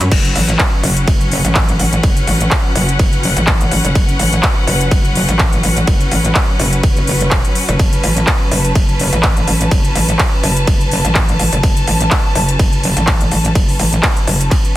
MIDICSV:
0, 0, Header, 1, 4, 480
1, 0, Start_track
1, 0, Key_signature, 3, "minor"
1, 0, Tempo, 480000
1, 116, Time_signature, 4, 2, 24, 8
1, 14769, End_track
2, 0, Start_track
2, 0, Title_t, "String section"
2, 0, Program_c, 0, 48
2, 0, Note_on_c, 0, 54, 85
2, 0, Note_on_c, 0, 61, 77
2, 0, Note_on_c, 0, 83, 94
2, 102, Note_off_c, 0, 83, 0
2, 118, Note_on_c, 0, 71, 80
2, 118, Note_on_c, 0, 78, 94
2, 7783, Note_off_c, 0, 78, 0
2, 7797, Note_on_c, 0, 81, 93
2, 14769, Note_off_c, 0, 54, 0
2, 14769, Note_off_c, 0, 61, 0
2, 14769, Note_off_c, 0, 71, 0
2, 14769, Note_off_c, 0, 81, 0
2, 14769, End_track
3, 0, Start_track
3, 0, Title_t, "Wobble bass"
3, 0, Program_c, 1, 39
3, 7, Note_on_c, 1, 42, 95
3, 98, Note_off_c, 1, 42, 0
3, 116, Note_on_c, 1, 30, 95
3, 338, Note_off_c, 1, 30, 0
3, 355, Note_on_c, 1, 33, 100
3, 578, Note_off_c, 1, 33, 0
3, 834, Note_on_c, 1, 30, 94
3, 1058, Note_off_c, 1, 30, 0
3, 1075, Note_on_c, 1, 30, 100
3, 1426, Note_off_c, 1, 30, 0
3, 1447, Note_on_c, 1, 33, 103
3, 1778, Note_off_c, 1, 33, 0
3, 1794, Note_on_c, 1, 33, 97
3, 2018, Note_off_c, 1, 33, 0
3, 2035, Note_on_c, 1, 30, 98
3, 2258, Note_off_c, 1, 30, 0
3, 2274, Note_on_c, 1, 33, 100
3, 2497, Note_off_c, 1, 33, 0
3, 2755, Note_on_c, 1, 30, 96
3, 2978, Note_off_c, 1, 30, 0
3, 2995, Note_on_c, 1, 30, 99
3, 3346, Note_off_c, 1, 30, 0
3, 3367, Note_on_c, 1, 33, 102
3, 3698, Note_off_c, 1, 33, 0
3, 3715, Note_on_c, 1, 33, 98
3, 3826, Note_off_c, 1, 33, 0
3, 3846, Note_on_c, 1, 30, 94
3, 3938, Note_off_c, 1, 30, 0
3, 3954, Note_on_c, 1, 30, 95
3, 4178, Note_off_c, 1, 30, 0
3, 4195, Note_on_c, 1, 33, 101
3, 4418, Note_off_c, 1, 33, 0
3, 4674, Note_on_c, 1, 30, 94
3, 4897, Note_off_c, 1, 30, 0
3, 4914, Note_on_c, 1, 30, 100
3, 5265, Note_off_c, 1, 30, 0
3, 5287, Note_on_c, 1, 33, 102
3, 5618, Note_off_c, 1, 33, 0
3, 5635, Note_on_c, 1, 33, 100
3, 5858, Note_off_c, 1, 33, 0
3, 5875, Note_on_c, 1, 30, 96
3, 6098, Note_off_c, 1, 30, 0
3, 6115, Note_on_c, 1, 33, 97
3, 6338, Note_off_c, 1, 33, 0
3, 6596, Note_on_c, 1, 30, 99
3, 6818, Note_off_c, 1, 30, 0
3, 6835, Note_on_c, 1, 30, 95
3, 7298, Note_off_c, 1, 30, 0
3, 7314, Note_on_c, 1, 28, 100
3, 7425, Note_off_c, 1, 28, 0
3, 7687, Note_on_c, 1, 30, 99
3, 7778, Note_off_c, 1, 30, 0
3, 7795, Note_on_c, 1, 30, 97
3, 8018, Note_off_c, 1, 30, 0
3, 8036, Note_on_c, 1, 33, 99
3, 8258, Note_off_c, 1, 33, 0
3, 8515, Note_on_c, 1, 30, 97
3, 8738, Note_off_c, 1, 30, 0
3, 8754, Note_on_c, 1, 30, 97
3, 9105, Note_off_c, 1, 30, 0
3, 9127, Note_on_c, 1, 33, 103
3, 9458, Note_off_c, 1, 33, 0
3, 9475, Note_on_c, 1, 33, 102
3, 9698, Note_off_c, 1, 33, 0
3, 9715, Note_on_c, 1, 30, 97
3, 9938, Note_off_c, 1, 30, 0
3, 9954, Note_on_c, 1, 33, 99
3, 10178, Note_off_c, 1, 33, 0
3, 10435, Note_on_c, 1, 30, 100
3, 10658, Note_off_c, 1, 30, 0
3, 10675, Note_on_c, 1, 30, 100
3, 11026, Note_off_c, 1, 30, 0
3, 11046, Note_on_c, 1, 33, 101
3, 11378, Note_off_c, 1, 33, 0
3, 11395, Note_on_c, 1, 33, 99
3, 11506, Note_off_c, 1, 33, 0
3, 11527, Note_on_c, 1, 30, 100
3, 11618, Note_off_c, 1, 30, 0
3, 11634, Note_on_c, 1, 30, 96
3, 11858, Note_off_c, 1, 30, 0
3, 11875, Note_on_c, 1, 33, 101
3, 12098, Note_off_c, 1, 33, 0
3, 12355, Note_on_c, 1, 30, 96
3, 12578, Note_off_c, 1, 30, 0
3, 12594, Note_on_c, 1, 30, 100
3, 12945, Note_off_c, 1, 30, 0
3, 12967, Note_on_c, 1, 33, 102
3, 13298, Note_off_c, 1, 33, 0
3, 13315, Note_on_c, 1, 33, 99
3, 13538, Note_off_c, 1, 33, 0
3, 13554, Note_on_c, 1, 30, 97
3, 13778, Note_off_c, 1, 30, 0
3, 13795, Note_on_c, 1, 33, 103
3, 14018, Note_off_c, 1, 33, 0
3, 14275, Note_on_c, 1, 30, 95
3, 14498, Note_off_c, 1, 30, 0
3, 14769, End_track
4, 0, Start_track
4, 0, Title_t, "Drums"
4, 7, Note_on_c, 9, 42, 68
4, 107, Note_off_c, 9, 42, 0
4, 115, Note_on_c, 9, 49, 77
4, 115, Note_on_c, 9, 51, 68
4, 116, Note_on_c, 9, 36, 121
4, 215, Note_off_c, 9, 49, 0
4, 215, Note_off_c, 9, 51, 0
4, 216, Note_off_c, 9, 36, 0
4, 247, Note_on_c, 9, 42, 55
4, 347, Note_off_c, 9, 42, 0
4, 355, Note_on_c, 9, 46, 105
4, 455, Note_off_c, 9, 46, 0
4, 486, Note_on_c, 9, 42, 69
4, 586, Note_off_c, 9, 42, 0
4, 589, Note_on_c, 9, 39, 126
4, 595, Note_on_c, 9, 51, 68
4, 596, Note_on_c, 9, 36, 109
4, 689, Note_off_c, 9, 39, 0
4, 695, Note_off_c, 9, 51, 0
4, 696, Note_off_c, 9, 36, 0
4, 835, Note_on_c, 9, 46, 106
4, 935, Note_off_c, 9, 46, 0
4, 967, Note_on_c, 9, 42, 70
4, 1067, Note_off_c, 9, 42, 0
4, 1075, Note_on_c, 9, 51, 69
4, 1076, Note_on_c, 9, 36, 123
4, 1175, Note_off_c, 9, 51, 0
4, 1176, Note_off_c, 9, 36, 0
4, 1207, Note_on_c, 9, 42, 40
4, 1307, Note_off_c, 9, 42, 0
4, 1315, Note_on_c, 9, 46, 109
4, 1415, Note_off_c, 9, 46, 0
4, 1447, Note_on_c, 9, 42, 69
4, 1547, Note_off_c, 9, 42, 0
4, 1549, Note_on_c, 9, 39, 127
4, 1555, Note_on_c, 9, 36, 108
4, 1555, Note_on_c, 9, 51, 70
4, 1649, Note_off_c, 9, 39, 0
4, 1655, Note_off_c, 9, 36, 0
4, 1655, Note_off_c, 9, 51, 0
4, 1686, Note_on_c, 9, 42, 57
4, 1786, Note_off_c, 9, 42, 0
4, 1795, Note_on_c, 9, 46, 112
4, 1895, Note_off_c, 9, 46, 0
4, 1926, Note_on_c, 9, 42, 71
4, 2026, Note_off_c, 9, 42, 0
4, 2034, Note_on_c, 9, 51, 66
4, 2035, Note_on_c, 9, 36, 124
4, 2134, Note_off_c, 9, 51, 0
4, 2135, Note_off_c, 9, 36, 0
4, 2166, Note_on_c, 9, 42, 54
4, 2266, Note_off_c, 9, 42, 0
4, 2274, Note_on_c, 9, 46, 107
4, 2374, Note_off_c, 9, 46, 0
4, 2406, Note_on_c, 9, 42, 69
4, 2506, Note_off_c, 9, 42, 0
4, 2509, Note_on_c, 9, 39, 123
4, 2515, Note_on_c, 9, 36, 111
4, 2515, Note_on_c, 9, 51, 65
4, 2609, Note_off_c, 9, 39, 0
4, 2615, Note_off_c, 9, 36, 0
4, 2615, Note_off_c, 9, 51, 0
4, 2755, Note_on_c, 9, 46, 110
4, 2855, Note_off_c, 9, 46, 0
4, 2887, Note_on_c, 9, 42, 69
4, 2987, Note_off_c, 9, 42, 0
4, 2994, Note_on_c, 9, 36, 127
4, 2994, Note_on_c, 9, 51, 65
4, 3094, Note_off_c, 9, 36, 0
4, 3094, Note_off_c, 9, 51, 0
4, 3126, Note_on_c, 9, 42, 39
4, 3226, Note_off_c, 9, 42, 0
4, 3234, Note_on_c, 9, 46, 112
4, 3334, Note_off_c, 9, 46, 0
4, 3366, Note_on_c, 9, 42, 70
4, 3466, Note_off_c, 9, 42, 0
4, 3469, Note_on_c, 9, 39, 125
4, 3474, Note_on_c, 9, 36, 116
4, 3475, Note_on_c, 9, 51, 65
4, 3569, Note_off_c, 9, 39, 0
4, 3574, Note_off_c, 9, 36, 0
4, 3575, Note_off_c, 9, 51, 0
4, 3607, Note_on_c, 9, 42, 54
4, 3707, Note_off_c, 9, 42, 0
4, 3715, Note_on_c, 9, 46, 112
4, 3815, Note_off_c, 9, 46, 0
4, 3846, Note_on_c, 9, 42, 69
4, 3946, Note_off_c, 9, 42, 0
4, 3954, Note_on_c, 9, 36, 127
4, 3954, Note_on_c, 9, 51, 64
4, 4054, Note_off_c, 9, 36, 0
4, 4054, Note_off_c, 9, 51, 0
4, 4086, Note_on_c, 9, 42, 53
4, 4186, Note_off_c, 9, 42, 0
4, 4195, Note_on_c, 9, 46, 114
4, 4295, Note_off_c, 9, 46, 0
4, 4326, Note_on_c, 9, 42, 65
4, 4426, Note_off_c, 9, 42, 0
4, 4429, Note_on_c, 9, 39, 126
4, 4434, Note_on_c, 9, 36, 115
4, 4435, Note_on_c, 9, 51, 64
4, 4529, Note_off_c, 9, 39, 0
4, 4534, Note_off_c, 9, 36, 0
4, 4535, Note_off_c, 9, 51, 0
4, 4675, Note_on_c, 9, 46, 112
4, 4775, Note_off_c, 9, 46, 0
4, 4807, Note_on_c, 9, 42, 66
4, 4907, Note_off_c, 9, 42, 0
4, 4914, Note_on_c, 9, 36, 125
4, 4915, Note_on_c, 9, 51, 66
4, 5014, Note_off_c, 9, 36, 0
4, 5015, Note_off_c, 9, 51, 0
4, 5046, Note_on_c, 9, 42, 39
4, 5146, Note_off_c, 9, 42, 0
4, 5154, Note_on_c, 9, 46, 110
4, 5254, Note_off_c, 9, 46, 0
4, 5286, Note_on_c, 9, 42, 67
4, 5386, Note_off_c, 9, 42, 0
4, 5389, Note_on_c, 9, 39, 127
4, 5395, Note_on_c, 9, 36, 113
4, 5395, Note_on_c, 9, 51, 64
4, 5489, Note_off_c, 9, 39, 0
4, 5495, Note_off_c, 9, 36, 0
4, 5495, Note_off_c, 9, 51, 0
4, 5526, Note_on_c, 9, 42, 53
4, 5626, Note_off_c, 9, 42, 0
4, 5634, Note_on_c, 9, 46, 114
4, 5734, Note_off_c, 9, 46, 0
4, 5766, Note_on_c, 9, 42, 64
4, 5866, Note_off_c, 9, 42, 0
4, 5874, Note_on_c, 9, 51, 67
4, 5875, Note_on_c, 9, 36, 126
4, 5974, Note_off_c, 9, 51, 0
4, 5975, Note_off_c, 9, 36, 0
4, 6006, Note_on_c, 9, 42, 50
4, 6106, Note_off_c, 9, 42, 0
4, 6115, Note_on_c, 9, 46, 112
4, 6215, Note_off_c, 9, 46, 0
4, 6246, Note_on_c, 9, 42, 62
4, 6346, Note_off_c, 9, 42, 0
4, 6349, Note_on_c, 9, 39, 120
4, 6355, Note_on_c, 9, 36, 110
4, 6355, Note_on_c, 9, 51, 68
4, 6449, Note_off_c, 9, 39, 0
4, 6455, Note_off_c, 9, 36, 0
4, 6455, Note_off_c, 9, 51, 0
4, 6595, Note_on_c, 9, 46, 108
4, 6695, Note_off_c, 9, 46, 0
4, 6727, Note_on_c, 9, 42, 65
4, 6827, Note_off_c, 9, 42, 0
4, 6834, Note_on_c, 9, 51, 65
4, 6835, Note_on_c, 9, 36, 125
4, 6934, Note_off_c, 9, 51, 0
4, 6935, Note_off_c, 9, 36, 0
4, 6965, Note_on_c, 9, 42, 36
4, 7065, Note_off_c, 9, 42, 0
4, 7074, Note_on_c, 9, 46, 114
4, 7174, Note_off_c, 9, 46, 0
4, 7206, Note_on_c, 9, 42, 63
4, 7305, Note_off_c, 9, 42, 0
4, 7309, Note_on_c, 9, 39, 118
4, 7315, Note_on_c, 9, 36, 110
4, 7315, Note_on_c, 9, 51, 69
4, 7409, Note_off_c, 9, 39, 0
4, 7415, Note_off_c, 9, 36, 0
4, 7415, Note_off_c, 9, 51, 0
4, 7446, Note_on_c, 9, 42, 53
4, 7546, Note_off_c, 9, 42, 0
4, 7554, Note_on_c, 9, 46, 117
4, 7654, Note_off_c, 9, 46, 0
4, 7686, Note_on_c, 9, 42, 65
4, 7786, Note_off_c, 9, 42, 0
4, 7795, Note_on_c, 9, 36, 123
4, 7795, Note_on_c, 9, 51, 68
4, 7895, Note_off_c, 9, 36, 0
4, 7895, Note_off_c, 9, 51, 0
4, 7927, Note_on_c, 9, 42, 52
4, 8027, Note_off_c, 9, 42, 0
4, 8035, Note_on_c, 9, 46, 106
4, 8135, Note_off_c, 9, 46, 0
4, 8166, Note_on_c, 9, 42, 63
4, 8266, Note_off_c, 9, 42, 0
4, 8270, Note_on_c, 9, 39, 117
4, 8275, Note_on_c, 9, 36, 107
4, 8275, Note_on_c, 9, 51, 68
4, 8370, Note_off_c, 9, 39, 0
4, 8375, Note_off_c, 9, 36, 0
4, 8375, Note_off_c, 9, 51, 0
4, 8515, Note_on_c, 9, 46, 105
4, 8615, Note_off_c, 9, 46, 0
4, 8646, Note_on_c, 9, 42, 65
4, 8746, Note_off_c, 9, 42, 0
4, 8754, Note_on_c, 9, 36, 123
4, 8756, Note_on_c, 9, 51, 66
4, 8854, Note_off_c, 9, 36, 0
4, 8856, Note_off_c, 9, 51, 0
4, 8887, Note_on_c, 9, 42, 36
4, 8987, Note_off_c, 9, 42, 0
4, 8995, Note_on_c, 9, 46, 104
4, 9095, Note_off_c, 9, 46, 0
4, 9127, Note_on_c, 9, 42, 66
4, 9227, Note_off_c, 9, 42, 0
4, 9229, Note_on_c, 9, 39, 120
4, 9235, Note_on_c, 9, 36, 108
4, 9235, Note_on_c, 9, 51, 71
4, 9329, Note_off_c, 9, 39, 0
4, 9335, Note_off_c, 9, 36, 0
4, 9335, Note_off_c, 9, 51, 0
4, 9367, Note_on_c, 9, 42, 53
4, 9467, Note_off_c, 9, 42, 0
4, 9475, Note_on_c, 9, 46, 108
4, 9575, Note_off_c, 9, 46, 0
4, 9607, Note_on_c, 9, 42, 65
4, 9707, Note_off_c, 9, 42, 0
4, 9714, Note_on_c, 9, 36, 121
4, 9715, Note_on_c, 9, 51, 72
4, 9814, Note_off_c, 9, 36, 0
4, 9815, Note_off_c, 9, 51, 0
4, 9846, Note_on_c, 9, 42, 55
4, 9946, Note_off_c, 9, 42, 0
4, 9955, Note_on_c, 9, 46, 103
4, 10055, Note_off_c, 9, 46, 0
4, 10086, Note_on_c, 9, 42, 66
4, 10186, Note_off_c, 9, 42, 0
4, 10189, Note_on_c, 9, 39, 117
4, 10195, Note_on_c, 9, 36, 104
4, 10195, Note_on_c, 9, 51, 72
4, 10289, Note_off_c, 9, 39, 0
4, 10295, Note_off_c, 9, 36, 0
4, 10295, Note_off_c, 9, 51, 0
4, 10435, Note_on_c, 9, 46, 107
4, 10535, Note_off_c, 9, 46, 0
4, 10566, Note_on_c, 9, 42, 66
4, 10666, Note_off_c, 9, 42, 0
4, 10675, Note_on_c, 9, 36, 116
4, 10675, Note_on_c, 9, 51, 71
4, 10775, Note_off_c, 9, 36, 0
4, 10775, Note_off_c, 9, 51, 0
4, 10806, Note_on_c, 9, 42, 38
4, 10906, Note_off_c, 9, 42, 0
4, 10914, Note_on_c, 9, 46, 104
4, 11014, Note_off_c, 9, 46, 0
4, 11047, Note_on_c, 9, 42, 66
4, 11147, Note_off_c, 9, 42, 0
4, 11150, Note_on_c, 9, 39, 117
4, 11154, Note_on_c, 9, 36, 106
4, 11155, Note_on_c, 9, 51, 73
4, 11250, Note_off_c, 9, 39, 0
4, 11254, Note_off_c, 9, 36, 0
4, 11255, Note_off_c, 9, 51, 0
4, 11287, Note_on_c, 9, 42, 53
4, 11387, Note_off_c, 9, 42, 0
4, 11394, Note_on_c, 9, 46, 106
4, 11494, Note_off_c, 9, 46, 0
4, 11526, Note_on_c, 9, 42, 68
4, 11626, Note_off_c, 9, 42, 0
4, 11635, Note_on_c, 9, 36, 119
4, 11635, Note_on_c, 9, 51, 72
4, 11735, Note_off_c, 9, 36, 0
4, 11735, Note_off_c, 9, 51, 0
4, 11767, Note_on_c, 9, 42, 56
4, 11867, Note_off_c, 9, 42, 0
4, 11874, Note_on_c, 9, 46, 101
4, 11974, Note_off_c, 9, 46, 0
4, 12006, Note_on_c, 9, 42, 68
4, 12106, Note_off_c, 9, 42, 0
4, 12108, Note_on_c, 9, 39, 120
4, 12114, Note_on_c, 9, 36, 102
4, 12114, Note_on_c, 9, 51, 72
4, 12208, Note_off_c, 9, 39, 0
4, 12214, Note_off_c, 9, 36, 0
4, 12214, Note_off_c, 9, 51, 0
4, 12354, Note_on_c, 9, 46, 102
4, 12454, Note_off_c, 9, 46, 0
4, 12486, Note_on_c, 9, 42, 68
4, 12586, Note_off_c, 9, 42, 0
4, 12594, Note_on_c, 9, 36, 114
4, 12595, Note_on_c, 9, 51, 72
4, 12694, Note_off_c, 9, 36, 0
4, 12695, Note_off_c, 9, 51, 0
4, 12726, Note_on_c, 9, 42, 39
4, 12826, Note_off_c, 9, 42, 0
4, 12835, Note_on_c, 9, 46, 104
4, 12935, Note_off_c, 9, 46, 0
4, 12967, Note_on_c, 9, 42, 72
4, 13067, Note_off_c, 9, 42, 0
4, 13070, Note_on_c, 9, 39, 122
4, 13074, Note_on_c, 9, 36, 107
4, 13076, Note_on_c, 9, 51, 73
4, 13170, Note_off_c, 9, 39, 0
4, 13174, Note_off_c, 9, 36, 0
4, 13176, Note_off_c, 9, 51, 0
4, 13207, Note_on_c, 9, 42, 57
4, 13307, Note_off_c, 9, 42, 0
4, 13315, Note_on_c, 9, 46, 102
4, 13415, Note_off_c, 9, 46, 0
4, 13447, Note_on_c, 9, 42, 67
4, 13547, Note_off_c, 9, 42, 0
4, 13554, Note_on_c, 9, 36, 119
4, 13555, Note_on_c, 9, 51, 72
4, 13654, Note_off_c, 9, 36, 0
4, 13655, Note_off_c, 9, 51, 0
4, 13686, Note_on_c, 9, 46, 61
4, 13786, Note_off_c, 9, 46, 0
4, 13794, Note_on_c, 9, 46, 103
4, 13894, Note_off_c, 9, 46, 0
4, 13926, Note_on_c, 9, 42, 71
4, 14026, Note_off_c, 9, 42, 0
4, 14029, Note_on_c, 9, 39, 121
4, 14034, Note_on_c, 9, 36, 103
4, 14035, Note_on_c, 9, 51, 73
4, 14129, Note_off_c, 9, 39, 0
4, 14134, Note_off_c, 9, 36, 0
4, 14135, Note_off_c, 9, 51, 0
4, 14166, Note_on_c, 9, 42, 39
4, 14266, Note_off_c, 9, 42, 0
4, 14275, Note_on_c, 9, 46, 105
4, 14375, Note_off_c, 9, 46, 0
4, 14407, Note_on_c, 9, 42, 70
4, 14507, Note_off_c, 9, 42, 0
4, 14509, Note_on_c, 9, 39, 38
4, 14514, Note_on_c, 9, 36, 118
4, 14515, Note_on_c, 9, 51, 69
4, 14609, Note_off_c, 9, 39, 0
4, 14614, Note_off_c, 9, 36, 0
4, 14615, Note_off_c, 9, 51, 0
4, 14646, Note_on_c, 9, 42, 41
4, 14746, Note_off_c, 9, 42, 0
4, 14769, End_track
0, 0, End_of_file